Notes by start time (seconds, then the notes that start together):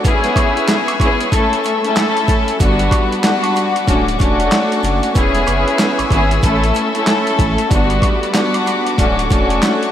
0.03 B3 C#4 E4 G#4 B4 G#5 C#6 E6, kick, closed hi-hat, shaker
0.24 snare, closed hi-hat
0.36 kick, closed hi-hat, high woodblock, shaker
0.57 closed hi-hat
0.68 snare, clap, closed hi-hat, shaker
0.88 closed hi-hat, high woodblock
1.00 B3 C#4 E4 G#4, kick, closed hi-hat, high woodblock, shaker
1.21 closed hi-hat
1.30 A3 C#4 E4 A4 E5 E6, kick, closed hi-hat, shaker
1.53 closed hi-hat
1.64 closed hi-hat, shaker
1.84 A3 C#4 E4 A4, closed hi-hat
1.96 snare, clap, closed hi-hat, shaker
2.17 closed hi-hat
2.28 kick, closed hi-hat, shaker
2.48 closed hi-hat
2.59 G1 G3 B3 D4 F#4 F#5 B5 D6, kick, closed hi-hat, shaker
2.79 closed hi-hat
2.91 kick, closed hi-hat, high woodblock, shaker
3.12 closed hi-hat
3.21 G3 B3 D4 F#4, snare, clap, closed hi-hat, shaker
3.43 closed hi-hat, high woodblock
3.56 closed hi-hat, high woodblock, shaker
3.76 closed hi-hat
3.86 D1 A3 C#4 D4 F#4 A4 C#6, kick, closed hi-hat, shaker
4.08 closed hi-hat
4.18 E1 A3 C#4 D4 F#4, kick, closed hi-hat, shaker
4.40 closed hi-hat
4.51 snare, clap, closed hi-hat, shaker
4.72 closed hi-hat
4.83 F#1, closed hi-hat, shaker
5.03 closed hi-hat
5.14 E1 B3 C#4 E4 G#4 B4 G#5 E6, kick, closed hi-hat, shaker
5.35 snare, closed hi-hat
5.47 F#1, closed hi-hat, high woodblock, shaker
5.68 closed hi-hat
5.79 snare, clap, closed hi-hat, shaker
5.98 G#1, closed hi-hat, high woodblock
6.10 G#1 B3 C#4 E4 G#4, kick, closed hi-hat, high woodblock, shaker
6.31 closed hi-hat
6.42 A1 A3 C#4 E4 A4 E5 C#6, kick, closed hi-hat, shaker
6.64 closed hi-hat
6.74 closed hi-hat, shaker
6.94 A3 C#4 E4 A4, closed hi-hat
7.07 snare, clap, closed hi-hat, shaker
7.27 closed hi-hat
7.39 A1, kick, closed hi-hat, shaker
7.58 closed hi-hat
7.70 G1 G3 B3 D4 F#4 F#5 B5 D6, kick, closed hi-hat, shaker
7.90 closed hi-hat
8.02 kick, closed hi-hat, high woodblock, shaker
8.23 closed hi-hat
8.32 G3 B3 D4 F#4, snare, clap, closed hi-hat, shaker
8.54 closed hi-hat, high woodblock
8.66 closed hi-hat, high woodblock, shaker
8.87 closed hi-hat
8.97 D1 A3 C#4 D4 F#4 A4 C#6, kick, closed hi-hat, shaker
9.19 closed hi-hat
9.28 E1 A3 C#4 D4 F#4, kick, closed hi-hat, shaker
9.50 closed hi-hat
9.62 snare, clap, closed hi-hat, shaker
9.83 closed hi-hat